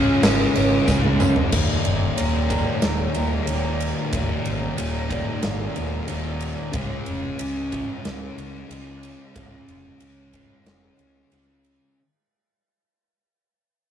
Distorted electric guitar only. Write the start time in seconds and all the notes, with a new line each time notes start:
Already playing: C#3 G#3 C#4
0.21 C#3 G#3 C#4
0.54 G#3 C#4
0.87 C#3 G#3 C#4
1.20 G#3 C#4
1.51 D#2 A#2 D#3
2.17 D#2 A#2 D#3
2.81 D#2 A#2 D#3
3.14 A#2 D#3
3.47 D#2 A#2 D#3
4.11 D#2 A#2 D#3
4.76 D#2 A#2 D#3
5.42 D#2 A#2 D#3
5.75 A#2 D#3
6.07 D#2 A#2 D#3
6.72 C#3 G#3 C#4
7.39 C#3 G#3 C#4
8.04 C#3 G#3 C#4
8.37 G#3 C#4
8.69 C#3 G#3 C#4
9.35 C#3 G#3 C#4
10.01 C#3 G#3 C#4
10.66 C#3 G#3 C#4
10.98 G#3 C#4
11.31 C#3 G#3 C#4